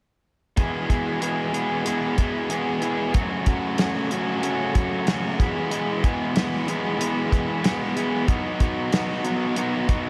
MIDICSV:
0, 0, Header, 1, 4, 480
1, 0, Start_track
1, 0, Key_signature, 4, "major"
1, 0, Tempo, 641711
1, 435, Time_signature, 4, 2, 24, 8
1, 7553, End_track
2, 0, Start_track
2, 0, Title_t, "Distorted electric guitar"
2, 0, Program_c, 0, 30
2, 435, Note_on_c, 0, 64, 80
2, 666, Note_off_c, 0, 64, 0
2, 675, Note_on_c, 0, 64, 69
2, 902, Note_off_c, 0, 64, 0
2, 911, Note_on_c, 0, 64, 65
2, 1143, Note_off_c, 0, 64, 0
2, 1152, Note_on_c, 0, 64, 67
2, 1386, Note_off_c, 0, 64, 0
2, 1395, Note_on_c, 0, 64, 76
2, 1621, Note_off_c, 0, 64, 0
2, 1630, Note_on_c, 0, 64, 58
2, 1863, Note_off_c, 0, 64, 0
2, 1872, Note_on_c, 0, 64, 66
2, 2105, Note_off_c, 0, 64, 0
2, 2114, Note_on_c, 0, 64, 62
2, 2342, Note_off_c, 0, 64, 0
2, 4045, Note_on_c, 0, 64, 90
2, 4273, Note_off_c, 0, 64, 0
2, 4282, Note_on_c, 0, 64, 78
2, 4513, Note_off_c, 0, 64, 0
2, 4522, Note_on_c, 0, 64, 74
2, 4751, Note_off_c, 0, 64, 0
2, 4760, Note_on_c, 0, 64, 70
2, 4995, Note_off_c, 0, 64, 0
2, 5004, Note_on_c, 0, 64, 68
2, 5232, Note_off_c, 0, 64, 0
2, 5241, Note_on_c, 0, 64, 94
2, 5471, Note_off_c, 0, 64, 0
2, 5480, Note_on_c, 0, 64, 74
2, 5705, Note_off_c, 0, 64, 0
2, 5714, Note_on_c, 0, 64, 74
2, 5952, Note_off_c, 0, 64, 0
2, 5961, Note_on_c, 0, 64, 77
2, 6185, Note_off_c, 0, 64, 0
2, 6188, Note_on_c, 0, 51, 71
2, 6421, Note_off_c, 0, 51, 0
2, 6430, Note_on_c, 0, 51, 76
2, 6662, Note_off_c, 0, 51, 0
2, 6671, Note_on_c, 0, 51, 65
2, 6908, Note_off_c, 0, 51, 0
2, 6917, Note_on_c, 0, 51, 59
2, 7149, Note_off_c, 0, 51, 0
2, 7158, Note_on_c, 0, 51, 75
2, 7387, Note_off_c, 0, 51, 0
2, 7396, Note_on_c, 0, 51, 68
2, 7553, Note_off_c, 0, 51, 0
2, 7553, End_track
3, 0, Start_track
3, 0, Title_t, "Overdriven electric guitar"
3, 0, Program_c, 1, 29
3, 424, Note_on_c, 1, 40, 66
3, 428, Note_on_c, 1, 47, 61
3, 429, Note_on_c, 1, 52, 70
3, 431, Note_on_c, 1, 56, 61
3, 431, Note_on_c, 1, 59, 73
3, 433, Note_on_c, 1, 68, 81
3, 656, Note_off_c, 1, 40, 0
3, 659, Note_off_c, 1, 47, 0
3, 660, Note_off_c, 1, 56, 0
3, 662, Note_off_c, 1, 52, 0
3, 664, Note_off_c, 1, 68, 0
3, 665, Note_on_c, 1, 40, 56
3, 667, Note_off_c, 1, 59, 0
3, 668, Note_on_c, 1, 47, 61
3, 669, Note_on_c, 1, 56, 65
3, 671, Note_on_c, 1, 52, 69
3, 673, Note_on_c, 1, 68, 67
3, 676, Note_on_c, 1, 59, 66
3, 894, Note_off_c, 1, 40, 0
3, 895, Note_off_c, 1, 47, 0
3, 898, Note_off_c, 1, 52, 0
3, 901, Note_off_c, 1, 56, 0
3, 902, Note_off_c, 1, 59, 0
3, 903, Note_on_c, 1, 40, 60
3, 904, Note_on_c, 1, 47, 64
3, 905, Note_off_c, 1, 68, 0
3, 907, Note_on_c, 1, 52, 54
3, 910, Note_on_c, 1, 56, 64
3, 911, Note_on_c, 1, 59, 60
3, 914, Note_on_c, 1, 68, 67
3, 1134, Note_off_c, 1, 40, 0
3, 1139, Note_off_c, 1, 52, 0
3, 1140, Note_off_c, 1, 47, 0
3, 1143, Note_on_c, 1, 40, 68
3, 1144, Note_off_c, 1, 56, 0
3, 1144, Note_off_c, 1, 68, 0
3, 1145, Note_off_c, 1, 59, 0
3, 1148, Note_on_c, 1, 52, 67
3, 1149, Note_on_c, 1, 47, 67
3, 1153, Note_on_c, 1, 56, 72
3, 1153, Note_on_c, 1, 68, 72
3, 1154, Note_on_c, 1, 59, 70
3, 1374, Note_off_c, 1, 40, 0
3, 1377, Note_off_c, 1, 52, 0
3, 1379, Note_off_c, 1, 47, 0
3, 1379, Note_off_c, 1, 56, 0
3, 1383, Note_off_c, 1, 59, 0
3, 1383, Note_on_c, 1, 40, 69
3, 1386, Note_off_c, 1, 68, 0
3, 1386, Note_on_c, 1, 52, 80
3, 1388, Note_on_c, 1, 47, 66
3, 1388, Note_on_c, 1, 56, 78
3, 1392, Note_on_c, 1, 59, 74
3, 1395, Note_on_c, 1, 68, 81
3, 1614, Note_off_c, 1, 40, 0
3, 1620, Note_off_c, 1, 47, 0
3, 1621, Note_off_c, 1, 52, 0
3, 1623, Note_off_c, 1, 59, 0
3, 1623, Note_on_c, 1, 40, 57
3, 1625, Note_off_c, 1, 56, 0
3, 1628, Note_off_c, 1, 68, 0
3, 1629, Note_on_c, 1, 47, 56
3, 1630, Note_on_c, 1, 52, 69
3, 1632, Note_on_c, 1, 59, 66
3, 1634, Note_on_c, 1, 56, 58
3, 1637, Note_on_c, 1, 68, 77
3, 1853, Note_off_c, 1, 40, 0
3, 1858, Note_off_c, 1, 52, 0
3, 1859, Note_off_c, 1, 47, 0
3, 1862, Note_on_c, 1, 40, 62
3, 1864, Note_off_c, 1, 56, 0
3, 1864, Note_off_c, 1, 59, 0
3, 1866, Note_off_c, 1, 68, 0
3, 1867, Note_on_c, 1, 52, 60
3, 1868, Note_on_c, 1, 47, 62
3, 1873, Note_on_c, 1, 56, 59
3, 1873, Note_on_c, 1, 59, 64
3, 1875, Note_on_c, 1, 68, 68
3, 2097, Note_off_c, 1, 40, 0
3, 2098, Note_off_c, 1, 47, 0
3, 2099, Note_off_c, 1, 52, 0
3, 2106, Note_off_c, 1, 56, 0
3, 2106, Note_off_c, 1, 59, 0
3, 2106, Note_off_c, 1, 68, 0
3, 2106, Note_on_c, 1, 40, 70
3, 2107, Note_on_c, 1, 47, 72
3, 2108, Note_on_c, 1, 52, 68
3, 2115, Note_on_c, 1, 56, 71
3, 2115, Note_on_c, 1, 59, 72
3, 2115, Note_on_c, 1, 68, 67
3, 2338, Note_off_c, 1, 40, 0
3, 2338, Note_off_c, 1, 47, 0
3, 2339, Note_off_c, 1, 52, 0
3, 2342, Note_off_c, 1, 56, 0
3, 2342, Note_off_c, 1, 59, 0
3, 2342, Note_off_c, 1, 68, 0
3, 2344, Note_on_c, 1, 42, 68
3, 2348, Note_on_c, 1, 49, 63
3, 2352, Note_on_c, 1, 54, 63
3, 2352, Note_on_c, 1, 57, 67
3, 2357, Note_on_c, 1, 61, 73
3, 2358, Note_on_c, 1, 66, 73
3, 2580, Note_off_c, 1, 42, 0
3, 2583, Note_off_c, 1, 49, 0
3, 2587, Note_off_c, 1, 57, 0
3, 2589, Note_on_c, 1, 42, 69
3, 2590, Note_off_c, 1, 61, 0
3, 2592, Note_on_c, 1, 49, 66
3, 2593, Note_off_c, 1, 54, 0
3, 2596, Note_on_c, 1, 54, 66
3, 2596, Note_on_c, 1, 57, 64
3, 2599, Note_on_c, 1, 61, 74
3, 2601, Note_off_c, 1, 66, 0
3, 2604, Note_on_c, 1, 66, 74
3, 2822, Note_off_c, 1, 42, 0
3, 2828, Note_off_c, 1, 49, 0
3, 2831, Note_on_c, 1, 42, 56
3, 2832, Note_off_c, 1, 57, 0
3, 2833, Note_off_c, 1, 61, 0
3, 2835, Note_off_c, 1, 54, 0
3, 2837, Note_on_c, 1, 49, 63
3, 2838, Note_on_c, 1, 54, 60
3, 2841, Note_on_c, 1, 57, 65
3, 2842, Note_off_c, 1, 66, 0
3, 2842, Note_on_c, 1, 61, 71
3, 2845, Note_on_c, 1, 66, 60
3, 3064, Note_off_c, 1, 42, 0
3, 3068, Note_off_c, 1, 49, 0
3, 3072, Note_off_c, 1, 57, 0
3, 3073, Note_off_c, 1, 54, 0
3, 3073, Note_off_c, 1, 61, 0
3, 3073, Note_on_c, 1, 42, 74
3, 3076, Note_on_c, 1, 54, 61
3, 3077, Note_on_c, 1, 49, 65
3, 3081, Note_on_c, 1, 57, 74
3, 3082, Note_on_c, 1, 61, 75
3, 3083, Note_off_c, 1, 66, 0
3, 3086, Note_on_c, 1, 66, 80
3, 3299, Note_off_c, 1, 42, 0
3, 3301, Note_off_c, 1, 49, 0
3, 3306, Note_off_c, 1, 57, 0
3, 3308, Note_on_c, 1, 42, 76
3, 3309, Note_off_c, 1, 61, 0
3, 3310, Note_on_c, 1, 49, 73
3, 3311, Note_off_c, 1, 54, 0
3, 3314, Note_on_c, 1, 54, 91
3, 3315, Note_on_c, 1, 57, 87
3, 3318, Note_on_c, 1, 61, 82
3, 3319, Note_off_c, 1, 66, 0
3, 3322, Note_on_c, 1, 66, 77
3, 3544, Note_off_c, 1, 42, 0
3, 3544, Note_off_c, 1, 49, 0
3, 3550, Note_off_c, 1, 61, 0
3, 3551, Note_off_c, 1, 54, 0
3, 3551, Note_off_c, 1, 57, 0
3, 3553, Note_on_c, 1, 42, 69
3, 3553, Note_on_c, 1, 49, 72
3, 3554, Note_on_c, 1, 54, 70
3, 3559, Note_on_c, 1, 61, 71
3, 3560, Note_on_c, 1, 57, 67
3, 3561, Note_off_c, 1, 66, 0
3, 3564, Note_on_c, 1, 66, 66
3, 3780, Note_off_c, 1, 42, 0
3, 3784, Note_off_c, 1, 49, 0
3, 3786, Note_off_c, 1, 57, 0
3, 3788, Note_off_c, 1, 61, 0
3, 3789, Note_off_c, 1, 54, 0
3, 3789, Note_on_c, 1, 42, 59
3, 3792, Note_on_c, 1, 54, 70
3, 3793, Note_on_c, 1, 49, 69
3, 3795, Note_on_c, 1, 57, 65
3, 3796, Note_off_c, 1, 66, 0
3, 3797, Note_on_c, 1, 61, 75
3, 3799, Note_on_c, 1, 66, 67
3, 4019, Note_off_c, 1, 42, 0
3, 4022, Note_off_c, 1, 49, 0
3, 4022, Note_on_c, 1, 40, 77
3, 4023, Note_off_c, 1, 57, 0
3, 4024, Note_off_c, 1, 61, 0
3, 4026, Note_on_c, 1, 47, 75
3, 4028, Note_off_c, 1, 54, 0
3, 4031, Note_on_c, 1, 52, 77
3, 4034, Note_off_c, 1, 66, 0
3, 4034, Note_on_c, 1, 59, 81
3, 4035, Note_on_c, 1, 56, 80
3, 4037, Note_on_c, 1, 68, 79
3, 4257, Note_off_c, 1, 40, 0
3, 4258, Note_off_c, 1, 47, 0
3, 4261, Note_off_c, 1, 52, 0
3, 4263, Note_off_c, 1, 56, 0
3, 4266, Note_off_c, 1, 68, 0
3, 4266, Note_on_c, 1, 40, 66
3, 4267, Note_on_c, 1, 47, 66
3, 4268, Note_off_c, 1, 59, 0
3, 4270, Note_on_c, 1, 52, 65
3, 4271, Note_on_c, 1, 59, 76
3, 4272, Note_on_c, 1, 56, 81
3, 4275, Note_on_c, 1, 68, 78
3, 4501, Note_off_c, 1, 40, 0
3, 4506, Note_off_c, 1, 47, 0
3, 4508, Note_off_c, 1, 52, 0
3, 4510, Note_on_c, 1, 40, 59
3, 4511, Note_off_c, 1, 56, 0
3, 4515, Note_off_c, 1, 68, 0
3, 4515, Note_on_c, 1, 47, 62
3, 4517, Note_off_c, 1, 59, 0
3, 4517, Note_on_c, 1, 52, 68
3, 4520, Note_on_c, 1, 56, 69
3, 4520, Note_on_c, 1, 59, 64
3, 4524, Note_on_c, 1, 68, 72
3, 4747, Note_off_c, 1, 40, 0
3, 4749, Note_off_c, 1, 47, 0
3, 4752, Note_off_c, 1, 52, 0
3, 4754, Note_off_c, 1, 56, 0
3, 4756, Note_on_c, 1, 40, 60
3, 4757, Note_off_c, 1, 68, 0
3, 4758, Note_on_c, 1, 47, 66
3, 4760, Note_on_c, 1, 52, 58
3, 4762, Note_off_c, 1, 59, 0
3, 4763, Note_on_c, 1, 56, 69
3, 4765, Note_on_c, 1, 59, 67
3, 4766, Note_on_c, 1, 68, 66
3, 4985, Note_off_c, 1, 40, 0
3, 4989, Note_off_c, 1, 47, 0
3, 4991, Note_off_c, 1, 52, 0
3, 4992, Note_off_c, 1, 56, 0
3, 4994, Note_on_c, 1, 40, 74
3, 4996, Note_off_c, 1, 68, 0
3, 4998, Note_on_c, 1, 47, 72
3, 5000, Note_on_c, 1, 52, 67
3, 5001, Note_on_c, 1, 56, 67
3, 5003, Note_off_c, 1, 59, 0
3, 5005, Note_on_c, 1, 68, 78
3, 5006, Note_on_c, 1, 59, 74
3, 5216, Note_off_c, 1, 40, 0
3, 5219, Note_off_c, 1, 52, 0
3, 5220, Note_off_c, 1, 47, 0
3, 5224, Note_off_c, 1, 56, 0
3, 5225, Note_on_c, 1, 40, 77
3, 5226, Note_off_c, 1, 68, 0
3, 5228, Note_on_c, 1, 52, 77
3, 5229, Note_on_c, 1, 47, 69
3, 5232, Note_off_c, 1, 59, 0
3, 5233, Note_on_c, 1, 56, 81
3, 5235, Note_on_c, 1, 59, 83
3, 5235, Note_on_c, 1, 68, 87
3, 5461, Note_off_c, 1, 40, 0
3, 5465, Note_off_c, 1, 47, 0
3, 5470, Note_off_c, 1, 52, 0
3, 5470, Note_on_c, 1, 40, 59
3, 5474, Note_off_c, 1, 56, 0
3, 5474, Note_on_c, 1, 47, 65
3, 5475, Note_off_c, 1, 68, 0
3, 5479, Note_on_c, 1, 52, 65
3, 5481, Note_off_c, 1, 59, 0
3, 5483, Note_on_c, 1, 56, 72
3, 5484, Note_on_c, 1, 59, 73
3, 5484, Note_on_c, 1, 68, 74
3, 5702, Note_off_c, 1, 40, 0
3, 5706, Note_off_c, 1, 47, 0
3, 5709, Note_off_c, 1, 52, 0
3, 5709, Note_off_c, 1, 56, 0
3, 5711, Note_on_c, 1, 40, 64
3, 5712, Note_off_c, 1, 68, 0
3, 5715, Note_on_c, 1, 47, 62
3, 5716, Note_off_c, 1, 59, 0
3, 5717, Note_on_c, 1, 52, 68
3, 5718, Note_on_c, 1, 56, 69
3, 5719, Note_on_c, 1, 59, 80
3, 5721, Note_on_c, 1, 68, 83
3, 5942, Note_off_c, 1, 40, 0
3, 5944, Note_off_c, 1, 47, 0
3, 5948, Note_off_c, 1, 52, 0
3, 5950, Note_off_c, 1, 56, 0
3, 5951, Note_on_c, 1, 40, 76
3, 5953, Note_on_c, 1, 47, 67
3, 5956, Note_off_c, 1, 68, 0
3, 5957, Note_on_c, 1, 52, 64
3, 5959, Note_on_c, 1, 56, 75
3, 5960, Note_off_c, 1, 59, 0
3, 5963, Note_on_c, 1, 59, 80
3, 5965, Note_on_c, 1, 68, 73
3, 6180, Note_off_c, 1, 40, 0
3, 6181, Note_off_c, 1, 47, 0
3, 6183, Note_off_c, 1, 52, 0
3, 6184, Note_off_c, 1, 56, 0
3, 6187, Note_off_c, 1, 68, 0
3, 6189, Note_on_c, 1, 47, 76
3, 6190, Note_on_c, 1, 54, 85
3, 6193, Note_off_c, 1, 59, 0
3, 6193, Note_on_c, 1, 59, 76
3, 6197, Note_on_c, 1, 66, 73
3, 6198, Note_on_c, 1, 63, 81
3, 6424, Note_off_c, 1, 47, 0
3, 6428, Note_off_c, 1, 54, 0
3, 6432, Note_off_c, 1, 59, 0
3, 6432, Note_off_c, 1, 63, 0
3, 6433, Note_on_c, 1, 47, 66
3, 6436, Note_off_c, 1, 66, 0
3, 6437, Note_on_c, 1, 54, 70
3, 6441, Note_on_c, 1, 59, 66
3, 6441, Note_on_c, 1, 63, 69
3, 6445, Note_on_c, 1, 66, 69
3, 6663, Note_off_c, 1, 54, 0
3, 6665, Note_off_c, 1, 47, 0
3, 6669, Note_off_c, 1, 59, 0
3, 6670, Note_off_c, 1, 63, 0
3, 6672, Note_on_c, 1, 54, 70
3, 6673, Note_off_c, 1, 66, 0
3, 6674, Note_on_c, 1, 47, 58
3, 6678, Note_on_c, 1, 59, 62
3, 6679, Note_on_c, 1, 63, 70
3, 6682, Note_on_c, 1, 66, 64
3, 6906, Note_off_c, 1, 47, 0
3, 6906, Note_off_c, 1, 54, 0
3, 6909, Note_off_c, 1, 59, 0
3, 6910, Note_off_c, 1, 63, 0
3, 6915, Note_off_c, 1, 66, 0
3, 6915, Note_on_c, 1, 47, 70
3, 6915, Note_on_c, 1, 54, 74
3, 6918, Note_on_c, 1, 59, 68
3, 6919, Note_on_c, 1, 63, 81
3, 6924, Note_on_c, 1, 66, 86
3, 7145, Note_off_c, 1, 47, 0
3, 7148, Note_off_c, 1, 54, 0
3, 7148, Note_off_c, 1, 59, 0
3, 7153, Note_off_c, 1, 63, 0
3, 7154, Note_off_c, 1, 66, 0
3, 7154, Note_on_c, 1, 47, 74
3, 7157, Note_on_c, 1, 54, 80
3, 7157, Note_on_c, 1, 59, 88
3, 7162, Note_on_c, 1, 63, 79
3, 7163, Note_on_c, 1, 66, 79
3, 7380, Note_off_c, 1, 47, 0
3, 7383, Note_off_c, 1, 54, 0
3, 7386, Note_off_c, 1, 59, 0
3, 7389, Note_off_c, 1, 63, 0
3, 7389, Note_on_c, 1, 47, 71
3, 7392, Note_on_c, 1, 54, 59
3, 7393, Note_off_c, 1, 66, 0
3, 7395, Note_on_c, 1, 59, 65
3, 7398, Note_on_c, 1, 63, 75
3, 7402, Note_on_c, 1, 66, 68
3, 7553, Note_off_c, 1, 47, 0
3, 7553, Note_off_c, 1, 54, 0
3, 7553, Note_off_c, 1, 59, 0
3, 7553, Note_off_c, 1, 63, 0
3, 7553, Note_off_c, 1, 66, 0
3, 7553, End_track
4, 0, Start_track
4, 0, Title_t, "Drums"
4, 428, Note_on_c, 9, 42, 64
4, 432, Note_on_c, 9, 36, 81
4, 503, Note_off_c, 9, 42, 0
4, 506, Note_off_c, 9, 36, 0
4, 672, Note_on_c, 9, 36, 66
4, 674, Note_on_c, 9, 42, 50
4, 747, Note_off_c, 9, 36, 0
4, 748, Note_off_c, 9, 42, 0
4, 912, Note_on_c, 9, 42, 72
4, 987, Note_off_c, 9, 42, 0
4, 1153, Note_on_c, 9, 42, 50
4, 1228, Note_off_c, 9, 42, 0
4, 1390, Note_on_c, 9, 42, 74
4, 1465, Note_off_c, 9, 42, 0
4, 1630, Note_on_c, 9, 42, 45
4, 1634, Note_on_c, 9, 36, 58
4, 1704, Note_off_c, 9, 42, 0
4, 1708, Note_off_c, 9, 36, 0
4, 1870, Note_on_c, 9, 42, 65
4, 1945, Note_off_c, 9, 42, 0
4, 2108, Note_on_c, 9, 42, 43
4, 2183, Note_off_c, 9, 42, 0
4, 2350, Note_on_c, 9, 42, 69
4, 2354, Note_on_c, 9, 36, 76
4, 2425, Note_off_c, 9, 42, 0
4, 2429, Note_off_c, 9, 36, 0
4, 2590, Note_on_c, 9, 42, 47
4, 2594, Note_on_c, 9, 36, 71
4, 2664, Note_off_c, 9, 42, 0
4, 2669, Note_off_c, 9, 36, 0
4, 2828, Note_on_c, 9, 42, 63
4, 2837, Note_on_c, 9, 38, 84
4, 2903, Note_off_c, 9, 42, 0
4, 2912, Note_off_c, 9, 38, 0
4, 3074, Note_on_c, 9, 42, 47
4, 3149, Note_off_c, 9, 42, 0
4, 3314, Note_on_c, 9, 42, 67
4, 3389, Note_off_c, 9, 42, 0
4, 3554, Note_on_c, 9, 42, 47
4, 3557, Note_on_c, 9, 36, 69
4, 3629, Note_off_c, 9, 42, 0
4, 3632, Note_off_c, 9, 36, 0
4, 3792, Note_on_c, 9, 42, 56
4, 3801, Note_on_c, 9, 38, 84
4, 3867, Note_off_c, 9, 42, 0
4, 3876, Note_off_c, 9, 38, 0
4, 4038, Note_on_c, 9, 36, 73
4, 4038, Note_on_c, 9, 42, 42
4, 4112, Note_off_c, 9, 36, 0
4, 4113, Note_off_c, 9, 42, 0
4, 4274, Note_on_c, 9, 42, 65
4, 4349, Note_off_c, 9, 42, 0
4, 4517, Note_on_c, 9, 42, 47
4, 4518, Note_on_c, 9, 36, 68
4, 4592, Note_off_c, 9, 36, 0
4, 4592, Note_off_c, 9, 42, 0
4, 4755, Note_on_c, 9, 42, 68
4, 4764, Note_on_c, 9, 38, 89
4, 4830, Note_off_c, 9, 42, 0
4, 4839, Note_off_c, 9, 38, 0
4, 4998, Note_on_c, 9, 42, 49
4, 5072, Note_off_c, 9, 42, 0
4, 5242, Note_on_c, 9, 42, 81
4, 5317, Note_off_c, 9, 42, 0
4, 5479, Note_on_c, 9, 36, 63
4, 5482, Note_on_c, 9, 42, 45
4, 5553, Note_off_c, 9, 36, 0
4, 5557, Note_off_c, 9, 42, 0
4, 5717, Note_on_c, 9, 42, 67
4, 5726, Note_on_c, 9, 38, 78
4, 5792, Note_off_c, 9, 42, 0
4, 5801, Note_off_c, 9, 38, 0
4, 5959, Note_on_c, 9, 42, 46
4, 6034, Note_off_c, 9, 42, 0
4, 6196, Note_on_c, 9, 42, 68
4, 6197, Note_on_c, 9, 36, 90
4, 6270, Note_off_c, 9, 42, 0
4, 6271, Note_off_c, 9, 36, 0
4, 6435, Note_on_c, 9, 42, 53
4, 6437, Note_on_c, 9, 36, 69
4, 6510, Note_off_c, 9, 42, 0
4, 6511, Note_off_c, 9, 36, 0
4, 6676, Note_on_c, 9, 42, 76
4, 6685, Note_on_c, 9, 38, 98
4, 6751, Note_off_c, 9, 42, 0
4, 6760, Note_off_c, 9, 38, 0
4, 6915, Note_on_c, 9, 42, 47
4, 6990, Note_off_c, 9, 42, 0
4, 7154, Note_on_c, 9, 42, 72
4, 7229, Note_off_c, 9, 42, 0
4, 7396, Note_on_c, 9, 42, 46
4, 7397, Note_on_c, 9, 36, 68
4, 7471, Note_off_c, 9, 42, 0
4, 7472, Note_off_c, 9, 36, 0
4, 7553, End_track
0, 0, End_of_file